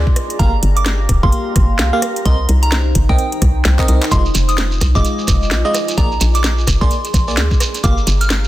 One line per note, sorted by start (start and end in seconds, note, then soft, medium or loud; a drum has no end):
0.00 0.16 G#4 medium
0.00 0.92 D5 medium
0.00 4.87 A#5 medium
0.00 0.32 C6 medium
0.07 kick medium
0.16 2.88 G4 medium
0.16 cross-stick medium
0.16 closed hi-hat loud
0.30 closed hi-hat soft
0.39 0.60 G1 loud
0.39 0.51 A#3 medium
0.39 0.51 G4 medium
0.39 0.51 F5 medium
0.39 2.88 F5 medium
0.39 0.56 A#5 loud
0.39 kick loud
0.39 closed hi-hat medium
0.63 1.07 G1 loud
0.63 closed hi-hat loud
0.77 0.97 D6 medium
0.77 closed hi-hat medium
0.86 snare loud
0.86 closed hi-hat medium
1.09 1.22 D1 medium
1.09 kick medium
1.09 cross-stick medium
1.09 closed hi-hat loud
1.23 1.31 G1 loud
1.23 1.90 A#3 medium
1.23 1.90 G4 medium
1.23 1.90 F5 medium
1.23 2.18 C6 loud
1.23 kick loud
1.32 closed hi-hat medium
1.56 1.81 G1 medium
1.56 kick loud
1.56 cross-stick medium
1.56 closed hi-hat loud
1.79 1.91 C2 loud
1.79 snare loud
1.79 closed hi-hat medium
1.93 2.01 A#3 loud
1.93 2.01 G4 medium
1.93 2.01 F5 loud
2.02 4.87 D#4 medium
2.02 cross-stick medium
2.02 closed hi-hat loud
2.09 4.87 C5 medium
2.16 closed hi-hat soft
2.25 2.47 C2 loud
2.25 2.37 C4 medium
2.25 2.37 A#4 medium
2.25 2.37 D#5 medium
2.25 2.43 C6 loud
2.25 kick loud
2.25 closed hi-hat medium
2.49 2.94 C2 medium
2.49 closed hi-hat loud
2.63 2.83 A#5 medium
2.63 closed hi-hat medium
2.72 snare loud
2.72 closed hi-hat medium
2.95 3.08 G1 medium
2.95 kick medium
2.95 closed hi-hat loud
3.09 3.17 C2 loud
3.09 3.23 C4 medium
3.09 3.23 A#4 medium
3.09 3.23 D#5 loud
3.09 4.04 G5 loud
3.09 kick loud
3.18 closed hi-hat medium
3.32 closed hi-hat medium
3.42 3.63 C2 medium
3.42 kick loud
3.42 cross-stick medium
3.42 closed hi-hat loud
3.65 3.77 C2 loud
3.65 snare loud
3.65 closed hi-hat medium
3.79 3.86 C4 medium
3.79 3.86 A#4 medium
3.79 3.86 D#5 loud
3.79 kick medium
3.79 clap medium
3.88 4.01 C2 medium
3.88 4.00 C4 medium
3.88 4.00 A#4 medium
3.88 4.00 D#5 medium
3.88 closed hi-hat loud
4.02 clap loud
4.02 closed hi-hat soft
4.11 4.33 F1 loud
4.11 4.23 G#3 medium
4.11 6.64 F4 medium
4.11 4.23 F4 medium
4.11 4.23 D#5 medium
4.11 4.29 C6 loud
4.11 kick loud
4.11 closed hi-hat medium
4.11 shekere medium
4.26 shekere soft
4.35 4.80 F1 loud
4.35 5.98 D#5 medium
4.35 closed hi-hat loud
4.35 shekere loud
4.48 4.69 D#6 medium
4.48 closed hi-hat medium
4.48 shekere soft
4.57 6.64 G#5 medium
4.57 snare loud
4.57 closed hi-hat medium
4.57 shekere soft
4.71 shekere soft
4.81 4.94 C2 medium
4.81 kick medium
4.81 cross-stick medium
4.81 closed hi-hat loud
4.81 shekere medium
4.95 5.03 F1 loud
4.95 5.62 G#3 medium
4.95 5.62 F4 medium
4.95 5.62 D#5 medium
4.95 5.90 D6 loud
4.95 kick loud
4.95 shekere soft
5.05 closed hi-hat medium
5.05 shekere medium
5.19 shekere soft
5.28 5.53 F1 medium
5.28 kick loud
5.28 cross-stick medium
5.28 closed hi-hat loud
5.28 shekere medium
5.42 shekere soft
5.51 5.63 A#1 loud
5.51 snare loud
5.51 closed hi-hat medium
5.51 shekere medium
5.65 5.78 G#3 medium
5.65 5.78 F4 medium
5.65 5.78 D#5 loud
5.65 shekere soft
5.74 cross-stick medium
5.74 closed hi-hat loud
5.74 shekere medium
5.88 closed hi-hat soft
5.88 shekere soft
5.97 6.19 A#1 loud
5.97 6.09 A#3 medium
5.97 6.09 G#4 medium
5.97 7.60 G#4 medium
5.97 6.09 D5 medium
5.97 6.15 A#5 loud
5.97 kick loud
5.97 closed hi-hat medium
5.97 shekere medium
6.12 shekere soft
6.21 6.66 A#1 loud
6.21 8.36 D5 medium
6.21 8.48 A#5 medium
6.21 closed hi-hat loud
6.21 shekere loud
6.35 6.55 D6 medium
6.35 closed hi-hat medium
6.35 shekere soft
6.44 snare loud
6.44 closed hi-hat medium
6.44 shekere medium
6.58 shekere soft
6.67 6.80 F1 medium
6.67 kick medium
6.67 cross-stick medium
6.67 closed hi-hat loud
6.67 shekere loud
6.81 6.90 A#1 loud
6.81 6.95 A#3 medium
6.81 6.95 G#4 medium
6.81 6.95 D5 loud
6.81 7.76 C6 medium
6.81 kick loud
6.81 shekere soft
6.91 closed hi-hat medium
6.91 shekere soft
7.04 closed hi-hat medium
7.04 shekere soft
7.14 7.39 A#1 medium
7.14 kick loud
7.14 cross-stick medium
7.14 closed hi-hat loud
7.14 shekere loud
7.28 7.41 A#3 medium
7.28 7.41 G#4 medium
7.28 7.41 D5 medium
7.28 shekere soft
7.37 7.49 D2 loud
7.37 snare loud
7.37 closed hi-hat medium
7.37 shekere medium
7.51 kick medium
7.51 shekere soft
7.60 8.48 G4 medium
7.60 cross-stick medium
7.60 closed hi-hat loud
7.60 shekere loud
7.68 8.48 F5 medium
7.74 closed hi-hat soft
7.74 shekere soft
7.83 8.05 G1 loud
7.83 7.95 A#3 medium
7.83 7.95 G4 medium
7.83 7.95 F5 loud
7.83 8.01 D6 loud
7.83 kick loud
7.83 closed hi-hat medium
7.83 shekere medium
7.97 shekere soft
8.07 8.48 G1 loud
8.07 closed hi-hat loud
8.07 shekere loud
8.21 8.41 F6 medium
8.21 closed hi-hat medium
8.21 shekere soft
8.30 snare loud
8.30 closed hi-hat medium
8.30 shekere medium
8.44 shekere soft